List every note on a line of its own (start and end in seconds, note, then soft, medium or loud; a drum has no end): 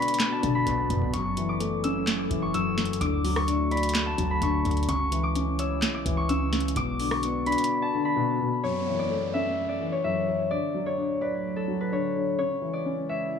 0.00 0.44 B2 medium
0.00 0.42 D3 medium
0.00 0.90 B3 medium
0.00 1.12 B3 medium
0.00 1.14 D4 medium
0.00 1.12 F#4 medium
0.00 1.12 D5 medium
0.00 0.55 B5 medium
0.00 0.87 C#6 medium
0.00 closed hi-hat medium
0.08 closed hi-hat medium
0.14 closed hi-hat medium
0.20 snare loud
0.20 clap loud
0.20 closed hi-hat medium
0.32 1.77 A5 medium
0.43 0.66 B2 loud
0.43 1.14 D3 medium
0.43 kick medium
0.43 closed hi-hat loud
0.55 1.90 B5 medium
0.66 0.89 B1 loud
0.66 0.89 B2 loud
0.66 kick loud
0.66 closed hi-hat medium
0.90 1.01 F#2 loud
0.90 1.14 B2 medium
0.90 kick medium
0.90 closed hi-hat medium
1.02 1.13 B1 loud
1.02 kick medium
1.13 2.27 F#1 loud
1.13 2.31 F#2 medium
1.13 2.99 F#3 medium
1.13 2.99 E4 medium
1.13 2.99 A4 medium
1.13 1.55 C#6 loud
1.13 kick loud
1.13 closed hi-hat medium
1.37 2.29 E3 medium
1.37 closed hi-hat medium
1.49 2.18 D6 medium
1.60 2.78 A3 medium
1.60 closed hi-hat medium
1.84 3.01 C#4 loud
1.84 2.54 E6 medium
1.84 closed hi-hat medium
2.07 snare loud
2.07 clap loud
2.07 closed hi-hat medium
2.19 2.48 D6 medium
2.31 2.98 E1 loud
2.31 3.01 E3 medium
2.31 kick medium
2.31 closed hi-hat medium
2.42 3.07 C#6 medium
2.54 2.77 F#2 medium
2.54 3.68 E6 medium
2.54 closed hi-hat medium
2.78 3.01 F#2 medium
2.78 snare medium
2.78 closed hi-hat soft
2.85 closed hi-hat medium
2.93 closed hi-hat medium
3.01 4.14 D2 loud
3.01 4.18 D3 medium
3.01 4.87 D3 medium
3.01 4.87 A3 medium
3.01 4.87 F#4 medium
3.01 3.42 D6 loud
3.01 kick loud
3.01 closed hi-hat medium
3.24 4.16 F#3 medium
3.24 open hi-hat medium
3.36 4.42 C#6 medium
3.36 cross-stick loud
3.48 4.65 D4 medium
3.48 closed hi-hat medium
3.71 4.88 D5 loud
3.71 4.30 B5 medium
3.71 closed hi-hat medium
3.77 closed hi-hat medium
3.83 closed hi-hat medium
3.89 closed hi-hat medium
3.95 snare loud
3.95 clap loud
3.95 closed hi-hat medium
4.06 5.51 A5 medium
4.18 4.41 D2 loud
4.18 4.88 F#3 medium
4.18 kick medium
4.18 closed hi-hat loud
4.31 5.66 B5 medium
4.42 4.64 D2 loud
4.42 4.64 D3 medium
4.42 4.88 C#6 medium
4.42 kick loud
4.42 closed hi-hat medium
4.65 4.88 D2 loud
4.65 4.89 D3 medium
4.65 kick medium
4.65 closed hi-hat medium
4.71 closed hi-hat medium
4.77 closed hi-hat medium
4.83 closed hi-hat medium
4.88 5.84 C#2 loud
4.88 6.74 C#3 medium
4.88 6.06 C#3 medium
4.88 6.74 G#3 medium
4.88 6.74 E4 medium
4.88 5.29 C#6 loud
4.88 kick loud
4.88 closed hi-hat medium
5.11 6.04 E3 medium
5.11 closed hi-hat medium
5.23 5.94 D6 medium
5.35 6.53 C#4 medium
5.35 closed hi-hat medium
5.59 6.76 C#5 loud
5.59 6.28 E6 medium
5.59 closed hi-hat medium
5.82 6.05 B1 loud
5.82 snare loud
5.82 clap loud
5.82 closed hi-hat medium
5.94 6.23 D6 medium
6.05 6.73 C#2 loud
6.05 6.76 E3 medium
6.05 kick medium
6.05 closed hi-hat medium
6.17 6.83 C#6 medium
6.29 6.52 C#3 medium
6.29 7.43 E6 medium
6.29 closed hi-hat medium
6.53 6.76 C#3 medium
6.53 snare medium
6.53 closed hi-hat soft
6.60 closed hi-hat medium
6.68 closed hi-hat medium
6.76 7.55 B1 loud
6.76 7.94 B2 medium
6.76 8.62 B3 medium
6.76 8.62 F#4 medium
6.76 8.62 D5 medium
6.76 7.17 D6 loud
6.76 kick loud
6.76 closed hi-hat medium
6.99 7.92 D3 medium
6.99 open hi-hat medium
7.11 8.37 C#6 medium
7.11 cross-stick loud
7.23 8.40 B3 medium
7.23 closed hi-hat medium
7.46 8.64 D4 medium
7.46 8.05 B5 medium
7.46 closed hi-hat medium
7.52 closed hi-hat medium
7.58 closed hi-hat medium
7.64 closed hi-hat medium
7.82 9.27 A5 medium
7.93 8.64 D3 medium
8.05 9.40 B5 medium
8.16 8.39 B2 medium
8.40 8.64 B2 medium
8.63 10.49 F#2 medium
8.63 9.81 F#2 medium
8.63 10.49 E3 medium
8.63 10.49 A4 medium
8.63 9.05 C#5 medium
8.63 downlifter medium
8.88 9.79 E3 medium
8.99 9.68 D5 medium
9.10 10.28 A3 medium
9.34 10.51 C#4 medium
9.34 10.04 E5 medium
9.69 9.98 D5 medium
9.81 10.51 E3 medium
9.92 10.57 C#5 medium
10.04 10.27 F#2 medium
10.04 11.76 E5 medium
10.28 10.51 F#2 medium
10.51 12.37 D2 medium
10.51 12.37 A2 medium
10.51 11.68 D3 medium
10.51 12.37 F#3 medium
10.51 10.92 D5 loud
10.74 11.66 F#3 medium
10.86 11.92 C#5 medium
10.98 12.15 D4 medium
11.21 11.80 B4 medium
11.21 12.38 D5 loud
11.56 13.39 A4 medium
11.68 12.38 F#3 medium
11.81 13.39 B4 medium
11.92 12.14 D3 medium
11.92 12.38 C#5 medium
12.16 12.39 D3 medium
12.39 13.39 C#3 medium
12.39 13.39 G#3 medium
12.39 13.39 E4 medium
12.39 12.79 C#5 loud
12.62 13.39 E3 medium
12.73 13.39 D5 medium
12.86 13.39 C#4 medium
13.09 13.39 C#5 loud
13.09 13.39 E5 medium